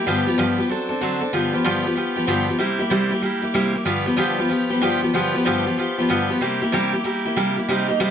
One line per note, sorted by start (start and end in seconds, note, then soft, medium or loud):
0.07 0.27 G2 medium
0.07 0.27 D3 medium
0.07 0.28 F3 medium
0.07 0.27 B3 loud
0.07 0.27 F4 loud
0.07 0.26 G4 medium
0.27 0.38 F3 medium
0.27 0.38 B3 medium
0.27 0.38 F4 medium
0.27 0.38 G4 medium
0.38 0.59 G2 loud
0.38 0.59 D3 loud
0.38 0.59 F3 loud
0.38 0.59 B3 loud
0.38 0.58 F4 loud
0.38 0.57 G4 loud
0.58 0.68 F3 medium
0.58 0.69 B3 medium
0.58 0.70 F4 medium
0.58 0.70 G4 medium
0.69 0.90 F#3 medium
0.69 0.90 C4 medium
0.69 0.89 D4 medium
0.69 0.88 A4 medium
0.89 1.01 C4 soft
0.89 1.01 D4 medium
0.89 1.01 A4 medium
1.01 1.22 D3 medium
1.01 1.22 F#3 loud
1.01 1.22 C4 loud
1.01 1.21 D4 medium
1.01 1.20 A4 loud
1.21 1.33 C4 soft
1.21 1.33 D4 soft
1.21 1.33 A4 medium
1.33 1.54 G2 medium
1.33 1.54 D3 medium
1.33 1.54 F3 medium
1.33 1.54 B3 medium
1.33 1.53 F4 medium
1.33 1.52 G4 medium
1.53 1.64 F3 soft
1.53 1.64 B3 medium
1.53 1.64 F4 medium
1.53 1.65 G4 medium
1.64 1.85 G2 loud
1.64 1.86 D3 loud
1.64 1.86 F3 loud
1.64 1.85 B3 loud
1.64 1.84 F4 loud
1.64 1.83 G4 loud
1.85 1.94 F3 soft
1.85 1.95 B3 medium
1.85 1.96 F4 medium
1.85 1.96 G4 medium
1.96 2.17 F3 medium
1.96 2.16 B3 medium
1.96 2.16 F4 medium
1.96 2.15 G4 medium
2.16 2.26 F3 soft
2.16 2.27 B3 soft
2.16 2.27 F4 medium
2.16 2.27 G4 medium
2.27 2.48 G2 medium
2.27 2.49 D3 medium
2.27 2.49 F3 loud
2.27 2.49 B3 loud
2.27 2.48 F4 medium
2.27 2.47 G4 medium
2.48 2.59 F3 soft
2.48 2.59 B3 soft
2.48 2.60 F4 medium
2.48 2.59 G4 medium
2.58 2.80 C3 medium
2.58 2.80 G3 medium
2.58 2.80 A#3 medium
2.58 2.79 E4 medium
2.58 2.78 G4 medium
2.79 2.90 A#3 soft
2.79 2.90 E4 medium
2.79 2.90 G4 medium
2.90 3.12 C3 loud
2.90 3.12 G3 loud
2.90 3.12 A#3 loud
2.90 3.11 E4 loud
2.90 3.09 G4 loud
3.11 3.21 A#3 medium
3.11 3.22 E4 medium
3.11 3.23 G4 medium
3.21 3.43 G3 medium
3.21 3.43 A#3 medium
3.21 3.42 E4 medium
3.21 3.41 G4 medium
3.42 3.54 A#3 soft
3.42 3.54 E4 medium
3.42 3.54 G4 medium
3.54 3.75 C3 medium
3.54 3.75 G3 medium
3.54 3.75 A#3 medium
3.54 3.74 E4 medium
3.54 3.73 G4 loud
3.74 3.85 A#3 soft
3.74 3.85 E4 medium
3.74 3.85 G4 soft
3.85 4.07 G2 medium
3.85 4.07 D3 medium
3.85 4.07 F3 medium
3.85 4.06 B3 loud
3.85 4.06 F4 loud
3.85 4.05 G4 medium
4.06 4.16 F3 medium
4.06 4.16 B3 medium
4.06 4.16 F4 medium
4.06 4.17 G4 medium
4.16 4.38 G2 loud
4.16 4.39 D3 loud
4.16 4.39 F3 loud
4.16 4.39 B3 loud
4.16 4.38 F4 loud
4.16 4.37 G4 loud
4.38 4.48 F3 soft
4.38 4.48 B3 medium
4.38 4.49 F4 medium
4.38 4.50 G4 medium
4.49 4.71 F3 medium
4.49 4.71 B3 medium
4.49 4.70 F4 medium
4.49 4.69 G4 medium
4.70 4.81 F3 soft
4.70 4.81 B3 medium
4.70 4.81 F4 medium
4.70 4.81 G4 medium
4.81 5.03 G2 loud
4.81 5.03 D3 medium
4.81 5.03 F3 medium
4.81 5.02 B3 loud
4.81 5.01 F4 loud
4.81 5.01 G4 loud
5.02 5.13 F3 soft
5.02 5.13 B3 soft
5.02 5.14 F4 medium
5.02 5.14 G4 medium
5.14 5.35 G2 medium
5.14 5.35 D3 medium
5.14 5.35 F3 medium
5.14 5.35 B3 medium
5.14 5.34 F4 medium
5.14 5.33 G4 loud
5.34 5.45 F3 soft
5.34 5.45 B3 medium
5.34 5.46 F4 medium
5.34 5.46 G4 medium
5.45 5.66 G2 medium
5.45 5.66 D3 loud
5.45 5.67 F3 loud
5.45 5.66 B3 loud
5.45 5.66 F4 loud
5.45 5.65 G4 loud
5.66 5.76 F3 medium
5.66 5.77 B3 medium
5.66 5.78 F4 medium
5.66 5.77 G4 medium
5.78 5.98 F3 medium
5.78 5.99 B3 medium
5.78 5.98 F4 medium
5.78 5.97 G4 medium
5.98 6.08 F3 medium
5.98 6.09 B3 medium
5.98 6.09 F4 medium
5.98 6.09 G4 medium
6.09 6.30 G2 medium
6.09 6.30 D3 loud
6.09 6.30 F3 loud
6.09 6.30 B3 loud
6.09 6.30 F4 medium
6.09 6.29 G4 loud
6.30 6.41 F3 soft
6.30 6.41 B3 medium
6.30 6.42 F4 medium
6.30 6.41 G4 medium
6.41 6.62 C3 medium
6.41 6.62 G3 medium
6.41 6.62 A#3 medium
6.41 6.61 E4 medium
6.41 6.60 G4 medium
6.62 6.72 A#3 medium
6.62 6.73 E4 medium
6.62 6.73 G4 medium
6.72 6.93 C3 loud
6.72 6.94 G3 loud
6.72 6.94 A#3 loud
6.72 6.93 E4 loud
6.72 6.92 G4 loud
6.93 7.04 A#3 medium
6.93 7.04 E4 medium
6.93 7.05 G4 medium
7.04 7.25 G3 medium
7.04 7.26 A#3 medium
7.04 7.25 E4 medium
7.04 7.24 G4 medium
7.25 7.36 A#3 medium
7.25 7.36 E4 medium
7.25 7.37 G4 medium
7.36 7.57 C3 medium
7.36 7.57 G3 medium
7.36 7.58 A#3 medium
7.36 7.58 E4 medium
7.36 7.56 G4 medium
7.57 7.68 A#3 soft
7.57 7.69 E4 medium
7.57 7.69 G4 soft
7.68 7.89 C3 medium
7.68 7.89 G3 medium
7.68 7.90 A#3 medium
7.68 7.89 D#4 medium
7.68 7.87 G4 loud
7.88 8.00 A#3 medium
7.88 8.00 D#4 medium
7.88 8.00 G4 medium
8.00 8.11 C3 loud
8.00 8.11 G3 loud
8.00 8.11 A#3 loud
8.00 8.11 D#4 loud
8.00 8.11 G4 loud